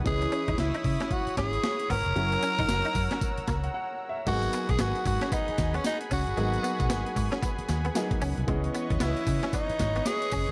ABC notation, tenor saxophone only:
X:1
M:4/4
L:1/16
Q:"Swing 16ths" 1/4=114
K:G#m
V:1 name="Tenor saxophone"
G4 E4 F2 G4 A2- | A12 z4 | F3 G F2 F2 D3 C D2 F2- | F8- F2 z6 |
z4 E4 D4 G4 |]